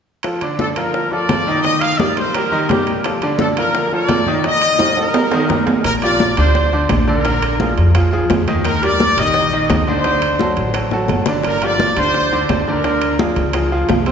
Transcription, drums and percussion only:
0.23 high bongo, high conga, high timbale
0.41 high bongo, high conga, high timbale
0.59 high bongo, high conga, low timbale
0.76 high conga, high timbale
0.93 high bongo, high conga
1.11 high bongo, high conga
1.29 high bongo, low bongo, high conga, high timbale, low timbale
1.47 high bongo
1.64 high bongo, high conga, high timbale
1.81 high conga, high timbale
1.99 high bongo, high conga, low timbale
2.17 high bongo, high conga, high timbale
2.35 high bongo, high conga, high timbale
2.52 high bongo, high conga
2.69 high bongo, low bongo, high conga, high timbale, low timbale
2.87 high bongo, high timbale
3.04 high bongo, high conga, high timbale
3.21 high bongo, high conga, high timbale
3.39 high bongo, high conga, low timbale
3.57 high conga, high timbale
3.75 high bongo, high conga
3.91 high bongo, high conga
4.09 high bongo, low bongo, high conga, high timbale, low timbale
4.27 high bongo, high conga
4.44 high bongo, high conga, high timbale
4.62 high conga, high timbale
4.79 high bongo, high conga, high timbale
4.97 high bongo, high conga, high timbale
5.14 high bongo, high conga, low timbale
5.31 high bongo, high conga, low timbale
5.49 high bongo, low bongo, high conga, low timbale
5.67 high bongo, high conga, low timbale
5.84 high bongo, high conga, high timbale
6.02 high bongo, high conga, high timbale
6.19 high bongo, high conga, low timbale
6.37 high conga, high timbale
6.55 high bongo, high conga
6.72 high bongo, high conga
6.89 high bongo, low bongo, high conga, high timbale, low timbale
7.08 high bongo
7.25 high bongo, high conga, high timbale
7.42 high conga, high timbale
7.60 high bongo, high conga, low timbale
7.78 high bongo, high conga, high timbale
7.95 high bongo, high conga, high timbale
8.12 high bongo, high conga
8.30 high bongo, low bongo, high conga, high timbale, low timbale
8.48 high bongo, high conga, high timbale
8.65 high bongo, high conga, high timbale
8.82 high bongo, high conga, high timbale
9.00 high bongo, high conga, low timbale
9.18 high conga, high timbale
9.34 high bongo, high conga
9.52 high bongo, high conga
9.70 high bongo, low bongo, high conga, high timbale, low timbale
9.87 high bongo
10.04 high bongo, high conga, high timbale
10.22 high conga, high timbale
10.39 high bongo, high conga, low timbale
10.57 high bongo, high conga, high timbale
10.74 high bongo, high conga, high timbale
10.91 high bongo, high conga
11.08 low bongo, high conga, high timbale, low timbale
11.26 low bongo, high timbale
11.43 high bongo, high conga, high timbale
11.62 high bongo, high conga, high timbale
11.79 high bongo, high conga, low timbale
11.97 high conga, high timbale
12.14 high bongo, high conga
12.32 high bongo, high conga
12.49 high bongo, low bongo, high conga, high timbale, low timbale
12.67 high bongo
12.84 high bongo, high conga, high timbale
13.02 high conga, high timbale
13.19 high bongo, high conga, low timbale
13.36 high bongo, high conga, high timbale
13.53 high bongo, high conga, high timbale
13.72 high bongo, high conga
13.89 high bongo, low bongo, high conga, high timbale, low timbale
14.06 high bongo, high timbale

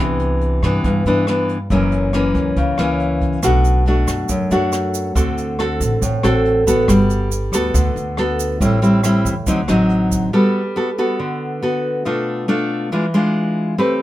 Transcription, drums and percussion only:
0.20 closed hi-hat
0.41 closed hi-hat
0.63 cross-stick, closed hi-hat
0.84 kick, closed hi-hat
1.06 closed hi-hat
1.27 cross-stick, closed hi-hat
1.49 closed hi-hat
1.70 kick, closed hi-hat
1.92 closed hi-hat
2.13 cross-stick, closed hi-hat
2.35 kick, closed hi-hat
2.56 kick, closed hi-hat
2.78 cross-stick, closed hi-hat
3.00 closed hi-hat
3.21 kick, closed hi-hat
3.43 kick, cross-stick, closed hi-hat, shaker
3.64 closed hi-hat, shaker
3.86 closed hi-hat
4.08 cross-stick, closed hi-hat, shaker
4.29 kick, closed hi-hat, shaker
4.51 closed hi-hat, shaker
4.73 cross-stick, closed hi-hat, shaker
4.94 closed hi-hat, shaker
5.15 kick, closed hi-hat, shaker
5.37 closed hi-hat, shaker
5.59 cross-stick, closed hi-hat
5.80 kick, closed hi-hat, shaker
6.02 kick, closed hi-hat, shaker
6.23 cross-stick, closed hi-hat, shaker
6.45 closed hi-hat
6.67 kick, closed hi-hat, shaker
6.88 kick, cross-stick, closed hi-hat, shaker
7.10 closed hi-hat, shaker
7.31 closed hi-hat, shaker
7.53 cross-stick, closed hi-hat, shaker
7.74 kick, closed hi-hat, shaker
7.96 closed hi-hat, shaker
8.17 cross-stick, closed hi-hat
8.39 closed hi-hat, shaker
8.61 kick, closed hi-hat, shaker
8.82 closed hi-hat, shaker
9.03 cross-stick, closed hi-hat, shaker
9.25 kick, closed hi-hat, shaker
9.46 kick, closed hi-hat, shaker
9.68 cross-stick, closed hi-hat, shaker
9.89 closed hi-hat
10.11 kick, closed hi-hat, shaker

